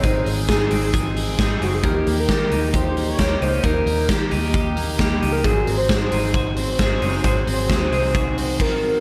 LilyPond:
<<
  \new Staff \with { instrumentName = "Soft synth lead" } { \time 4/4 \key aes \mixolydian \tempo 4 = 133 c''4 aes'4 r4. ges'16 aes'16 | g'8. bes'16 bes'4 c''8. des''8. c''8 | bes'4 g'4 r4. g'16 bes'16 | aes'8. c''16 c''4 c''2~ |
c''2. bes'4 | }
  \new Staff \with { instrumentName = "Clean electric guitar" } { \time 4/4 \key aes \mixolydian <ees aes c' aes'>8 aes8 aes'8 c'8 aes'8 aes8 aes'8 c'8 | bes8 bes8 g'8 ees'8 g'8 bes8 g'8 ees'8 | bes8 bes8 g'8 ees'8 g'8 bes8 g'8 ees'8 | ges8 c'8 ges'8 ees'8 ges'8 c'8 ges'8 des'16 ees'16 |
ges8 c'8 ges'8 ees'8 ges'8 c'8 r4 | }
  \new Staff \with { instrumentName = "Clean electric guitar" } { \time 4/4 \key aes \mixolydian <aes, ees aes c' ees' aes'>4 <aes c' ees' aes'>8 <aes c' ees' aes'>4. <aes c' ees' aes'>8 <aes c' ees' aes'>8 | <ees g bes ees' g'>4 <g bes ees' g'>8 <bes ees' g'>4. <g bes ees' g'>8 <bes ees' g'>8 | <ees g bes ees' g'>4 <g bes ees' g'>8 <bes ees' g'>4. <g bes ees' g'>8 <bes ees' g'>8 | <aes, ees ges aes c' aes'>4 <ges aes c' aes'>8 <ges aes c' aes'>4. <ges aes c' aes'>8 <ges aes c' aes'>8 |
<aes, ees ges aes c' aes'>4 <ges aes c' aes'>8 <ges aes c' aes'>4. r4 | }
  \new Staff \with { instrumentName = "Fingered electric bass" } { \clef bass \time 4/4 \key aes \mixolydian aes,,8 aes,,8 aes,8 aes,,4. aes,,8 ges,,8 | ees,8 ees,8 ees8 ees,4. ees,8 des,8 | ees,8 ees,8 ees8 ees,4. ees,8 des,8 | aes,,8 aes,,8 aes,8 aes,,4. aes,,8 ges,,8 |
aes,,8 aes,,8 ees,8 c,4. r4 | }
  \new DrumStaff \with { instrumentName = "Drums" } \drummode { \time 4/4 <hh bd>8 hho8 <hh bd sn>8 hho8 <hh bd>8 hho8 <hh bd sn>8 hho8 | <hh bd>8 hho8 <hh bd sn>8 hho8 <hh bd>8 hho8 <hh bd sn>8 hho8 | <hh bd>8 hho8 <hh bd sn>8 hho8 <hh bd>8 hho8 <hh bd sn>8 hho8 | <hh bd>8 hho8 <hh bd sn>8 hho8 <hh bd>8 hho8 <hh bd sn>8 hho8 |
<hh bd>8 hho8 <hh bd sn>8 hho8 <hh bd>8 hho8 <cymc bd>4 | }
>>